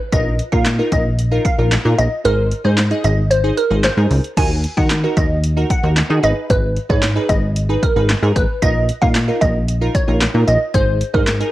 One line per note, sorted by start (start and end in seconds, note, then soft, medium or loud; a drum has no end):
0.12 0.41 A#1 loud
0.12 0.36 D#4 medium
0.12 0.36 F4 medium
0.12 0.36 A#4 medium
0.12 0.34 D#5 loud
0.12 kick loud
0.12 closed hi-hat medium
0.39 closed hi-hat medium
0.52 0.81 A#2 medium
0.52 0.68 D#4 medium
0.52 0.68 F4 medium
0.52 0.68 A#4 medium
0.52 0.63 F5 medium
0.52 kick loud
0.66 snare loud
0.66 clap loud
0.66 closed hi-hat loud
0.79 1.10 D#4 medium
0.79 1.10 F4 medium
0.79 1.10 A#4 medium
0.92 1.40 A#1 loud
0.92 1.13 D#5 medium
0.92 kick loud
0.92 closed hi-hat medium
1.19 closed hi-hat loud
1.32 1.48 D#4 medium
1.32 1.48 F4 medium
1.32 1.48 A#4 medium
1.45 1.66 F5 medium
1.45 kick loud
1.45 closed hi-hat medium
1.59 1.78 A#1 medium
1.59 1.74 D#4 medium
1.59 1.74 F4 medium
1.59 1.74 A#4 medium
1.72 snare loud
1.72 clap loud
1.72 closed hi-hat medium
1.85 1.95 A#2 loud
1.85 2.08 D#4 medium
1.85 2.09 F4 medium
1.85 2.09 A#4 medium
1.98 2.08 A#1 loud
1.98 2.09 D#5 medium
1.98 closed hi-hat medium
2.24 2.54 G#1 loud
2.24 2.48 D#4 medium
2.24 2.48 G#4 medium
2.24 2.46 A#4 loud
2.24 2.48 C5 medium
2.24 closed hi-hat medium
2.52 closed hi-hat medium
2.64 2.93 G#2 medium
2.64 2.80 D#4 medium
2.64 2.80 G#4 medium
2.64 2.75 C5 medium
2.64 2.80 C5 medium
2.78 snare loud
2.78 clap loud
2.78 closed hi-hat loud
2.91 3.22 D#4 medium
2.91 3.23 G#4 medium
2.91 3.23 D#5 medium
2.91 closed hi-hat soft
3.04 3.52 G#1 loud
3.04 3.26 D#5 medium
3.04 closed hi-hat medium
3.31 3.52 C5 medium
3.31 closed hi-hat loud
3.44 3.60 D#4 medium
3.44 3.60 G#4 medium
3.44 3.60 C5 medium
3.58 3.68 A#4 medium
3.58 closed hi-hat medium
3.71 3.90 G#1 medium
3.71 3.86 D#4 medium
3.71 3.87 G#4 medium
3.71 3.87 C5 medium
3.84 4.22 C5 medium
3.84 snare loud
3.84 clap loud
3.84 closed hi-hat medium
3.97 4.07 G#2 loud
3.97 4.21 D#4 medium
3.97 4.21 G#4 medium
3.97 4.21 A#4 medium
4.11 4.20 C#2 loud
4.11 open hi-hat medium
4.24 closed hi-hat medium
4.37 4.66 D#2 loud
4.37 4.61 D#4 medium
4.37 4.61 F#4 medium
4.37 4.61 A#4 medium
4.37 4.59 G#5 loud
4.37 kick loud
4.37 closed hi-hat medium
4.37 crash loud
4.64 closed hi-hat medium
4.77 5.06 D#3 medium
4.77 4.93 D#4 medium
4.77 4.93 F#4 medium
4.77 4.93 A#4 medium
4.77 4.88 F#5 medium
4.77 kick loud
4.90 snare loud
4.90 clap loud
4.90 closed hi-hat loud
5.03 5.35 D#4 medium
5.03 5.35 F#4 medium
5.03 5.35 A#4 medium
5.17 5.64 D#2 loud
5.17 5.38 D#5 medium
5.17 kick loud
5.17 closed hi-hat medium
5.43 closed hi-hat loud
5.56 5.72 D#4 medium
5.56 5.72 F#4 medium
5.56 5.73 A#4 medium
5.70 5.91 F#5 medium
5.70 kick loud
5.70 closed hi-hat medium
5.83 6.02 D#2 medium
5.83 5.99 D#4 medium
5.83 5.99 F#4 medium
5.83 5.99 A#4 medium
5.96 snare loud
5.96 clap loud
5.96 closed hi-hat medium
6.09 6.19 D#3 loud
6.09 6.21 D#4 medium
6.09 6.23 F#4 medium
6.09 6.21 G#4 medium
6.22 6.33 G#1 medium
6.22 6.76 D#4 medium
6.22 6.76 G#4 medium
6.22 6.76 B4 medium
6.22 6.34 D#5 medium
6.22 closed hi-hat medium
6.50 6.78 G#1 loud
6.50 6.71 B4 loud
6.50 kick loud
6.50 closed hi-hat medium
6.76 closed hi-hat medium
6.89 7.18 G#2 medium
6.89 7.05 D#4 medium
6.89 7.05 G#4 medium
6.89 7.05 B4 medium
6.89 7.00 C#5 medium
6.89 kick loud
7.03 snare loud
7.03 clap loud
7.03 closed hi-hat loud
7.16 7.47 D#4 medium
7.16 7.47 G#4 medium
7.16 7.48 B4 medium
7.29 7.77 G#1 loud
7.29 7.50 D#5 medium
7.29 kick loud
7.29 closed hi-hat medium
7.56 closed hi-hat loud
7.69 7.85 D#4 medium
7.69 7.85 G#4 medium
7.69 7.85 B4 medium
7.82 8.04 A#4 medium
7.82 kick loud
7.82 closed hi-hat medium
7.96 8.15 G#1 medium
7.96 8.11 D#4 medium
7.96 8.11 G#4 medium
7.96 8.12 B4 medium
8.09 snare loud
8.09 clap loud
8.09 closed hi-hat medium
8.22 8.32 G#2 loud
8.22 8.46 D#4 medium
8.22 8.46 G#4 medium
8.22 8.46 A#4 medium
8.36 8.45 A1 loud
8.36 8.46 B4 medium
8.36 kick loud
8.36 closed hi-hat medium
8.62 8.91 A#1 loud
8.62 8.85 D#4 medium
8.62 8.86 F4 medium
8.62 8.86 A#4 medium
8.62 8.83 D#5 loud
8.62 kick loud
8.62 closed hi-hat medium
8.89 closed hi-hat medium
9.02 9.31 A#2 medium
9.02 9.18 D#4 medium
9.02 9.18 F4 medium
9.02 9.18 A#4 medium
9.02 9.12 F5 medium
9.02 kick loud
9.15 snare loud
9.15 clap loud
9.15 closed hi-hat loud
9.28 9.60 D#4 medium
9.28 9.60 F4 medium
9.28 9.60 A#4 medium
9.41 9.89 A#1 loud
9.41 9.63 D#5 medium
9.41 kick loud
9.41 closed hi-hat medium
9.68 closed hi-hat loud
9.81 9.97 D#4 medium
9.81 9.97 F4 medium
9.81 9.97 A#4 medium
9.95 10.16 C#5 medium
9.95 kick loud
9.95 closed hi-hat medium
10.08 10.27 A#1 medium
10.08 10.24 D#4 medium
10.08 10.24 F4 medium
10.08 10.24 A#4 medium
10.21 snare loud
10.21 clap loud
10.21 closed hi-hat medium
10.34 10.44 A#2 loud
10.34 10.58 D#4 medium
10.34 10.58 F4 medium
10.34 10.58 A#4 medium
10.48 10.57 A#1 loud
10.48 10.58 D#5 medium
10.48 closed hi-hat medium
10.74 11.03 G#1 loud
10.74 10.98 D#4 medium
10.74 10.98 G#4 medium
10.74 10.96 C5 loud
10.74 10.98 C5 medium
10.74 kick loud
10.74 closed hi-hat medium
11.01 closed hi-hat medium
11.14 11.43 G#2 medium
11.14 11.30 D#4 medium
11.14 11.30 G#4 medium
11.14 11.25 A#4 medium
11.14 11.30 C5 medium
11.14 kick loud
11.27 snare loud
11.27 clap loud
11.27 closed hi-hat loud
11.41 11.52 D#4 medium
11.41 11.52 G#4 medium
11.41 11.52 A#4 medium
11.41 closed hi-hat soft